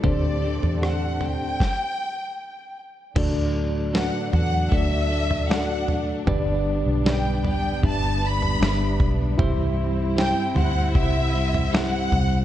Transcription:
Already playing: string section G3 A4
0.03 fingered electric bass D2, tine electric piano A2 D4 G4 A4 C5, clean electric guitar D3 A3 C4 G4 A4, string section D3 A3 C4, violin section D5, kick, floor tom
0.42 clean electric guitar C4 G4 A4
0.63 fingered electric bass E2, floor tom
0.81 clean electric guitar A3 C4 G4 A4, tine electric piano D4 G4 A4 D5, violin section F#5, cross-stick
1.20 fingered electric bass D2, clean electric guitar C4 G4 A4, violin section G5, floor tom
1.60 kick, snare
3.16 fingered electric bass D2, tine electric piano A2 D4 F#4 A4 D5, clean electric guitar D3 A3 D4 F#4 A4, string section F#3 A3 D4, kick, floor tom, crash
3.93 clean electric guitar A3 D4 F#4 A4, tine electric piano D4 F#4 A4 B4, violin section F#5, snare
4.33 fingered electric bass E2, clean electric guitar D4 F#4 A4, violin section F#5, floor tom
4.71 fingered electric bass D2, clean electric guitar A3 D4 F#4 A4, tine electric piano D4 F#4 A4 D5, violin section E5, kick, floor tom
5.10 clean electric guitar D4 F#4 A4
5.31 floor tom
5.49 clean electric guitar A3 D4 F#4 A4, tine electric piano D4 F#4 A4 D5, violin section F#5, snare
5.88 floor tom
6.27 fingered electric bass G1, tine electric piano G2 D3 D4 G4 B4 D5, clean electric guitar G3 D4 G4 B4, string section G3 B3, kick, floor tom
6.86 fingered electric bass B1
7.04 clean electric guitar G3 D4 G4 B4, tine electric piano D4 G4 B4 D5, violin section G5, snare
7.44 clean electric guitar D4 G4 B4, violin section G5, floor tom
7.82 fingered electric bass G1, clean electric guitar G3 D4 G4 B4, tine electric piano D4 G4 B4 E5, violin section A5, kick, floor tom
8.22 clean electric guitar D4 G4 B4, violin section B5
8.42 floor tom
8.60 fingered electric bass G1, clean electric guitar G3 D4 G4 B4, tine electric piano D4 G4 B4 E5, snare
9.00 fingered electric bass B1, kick, floor tom
9.38 fingered electric bass C2, tine electric piano G2 E4 G4 C5 E5, clean electric guitar C3 E3 G3 C4 E4 C5, string section C4 E4, kick, floor tom
10.16 clean electric guitar G3 C4 E4 C5, tine electric piano E4 G4 C5 E5, violin section G5, snare
10.55 fingered electric bass D2, clean electric guitar G3 C4 E4 C5, violin section F#5, floor tom
10.94 fingered electric bass C2, clean electric guitar G3 C4 E4 C5, tine electric piano E4 G4 C5 F#5, violin section E5, kick, floor tom
11.33 clean electric guitar G3 C4 E4 C5
11.54 floor tom
11.72 clean electric guitar G3 C4 E4 C5, tine electric piano E4 G4 C5 E5, violin section F#5, snare
12.12 fingered electric bass C2, floor tom

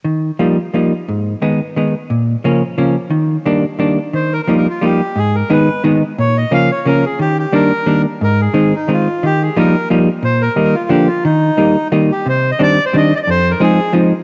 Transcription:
0.04 hollow-body jazz guitar D#3
0.39 hollow-body jazz guitar F3 G3 A#3 D#4
0.74 hollow-body jazz guitar F3 G3 A#3 D#4
1.08 hollow-body jazz guitar G#2
1.42 hollow-body jazz guitar D#3 G#3 B3 D#4
1.76 hollow-body jazz guitar D#3 G#3 B3 D#4
2.10 hollow-body jazz guitar A#2
2.44 hollow-body jazz guitar C#3 F3 A#3 C#4
2.78 hollow-body jazz guitar C#3 F3 A#3 C#4
3.10 hollow-body jazz guitar D#3
3.46 hollow-body jazz guitar D#3 G3 A#3 D4
3.79 hollow-body jazz guitar D#3 G3 A#3 D4
4.13 hollow-body jazz guitar D#3, bandoneon C5
4.33 bandoneon A#4
4.43 bandoneon A#4
4.47 hollow-body jazz guitar F3 G3 A#3 D#4
4.57 bandoneon A#4
4.70 bandoneon F4
4.81 hollow-body jazz guitar F3 G3 A#3 D#4, bandoneon G4
5.16 hollow-body jazz guitar G#2, bandoneon G#4
5.35 bandoneon A#4
5.50 hollow-body jazz guitar D#3 G#3 B3 D#4, bandoneon B4
5.84 hollow-body jazz guitar D#3 G#3 B3 D#4
6.18 hollow-body jazz guitar A#2, bandoneon C#5
6.37 bandoneon D#5
6.51 hollow-body jazz guitar C#3 F3 A#3 C#4, bandoneon F5
6.72 bandoneon C#5
6.86 hollow-body jazz guitar C#3 F3 A#3 C#4, bandoneon A#4
7.05 bandoneon G#4
7.19 hollow-body jazz guitar D#3, bandoneon G4
7.39 bandoneon G4
7.53 hollow-body jazz guitar D#3 G3 A#3 D4, bandoneon A#4
7.86 hollow-body jazz guitar D#3 G3 A#3 D4
8.21 hollow-body jazz guitar G#2, bandoneon A#4
8.41 bandoneon G#4
8.54 hollow-body jazz guitar D#3 G#3 C4 D#4
8.75 bandoneon D#4
8.88 hollow-body jazz guitar D#3 G#3 C4 D#4
8.92 bandoneon F4
9.23 hollow-body jazz guitar D#3, bandoneon G4
9.42 bandoneon G#4
9.56 hollow-body jazz guitar F3 G3 A#3 D#4, bandoneon A#4
9.90 hollow-body jazz guitar F3 G3 A#3 D#4
10.23 hollow-body jazz guitar A#2, bandoneon C5
10.42 bandoneon A#4
10.56 hollow-body jazz guitar D#3 G3 A#3 D#4
10.75 bandoneon F4
10.89 hollow-body jazz guitar D3 F3 A#3 D4, bandoneon G4
11.07 bandoneon F4
11.24 hollow-body jazz guitar D#3, bandoneon D#4
11.57 hollow-body jazz guitar D#3 G3 A#3 D#4
11.92 hollow-body jazz guitar D#3 G3 A#3 D#4
12.12 bandoneon G4
12.26 hollow-body jazz guitar C3, bandoneon C5
12.51 bandoneon D#5
12.59 hollow-body jazz guitar D#3 G3 C4 D4, bandoneon D5
12.85 bandoneon C5
12.93 hollow-body jazz guitar D#3 G3 C4 D4, bandoneon D#5
13.15 bandoneon D5 D#5
13.23 bandoneon D5
13.27 hollow-body jazz guitar F2, bandoneon C5
13.51 bandoneon A#4
13.60 hollow-body jazz guitar F3 G#3 C4 D#4, bandoneon G#4
13.93 hollow-body jazz guitar F3 G#3 C4 D#4

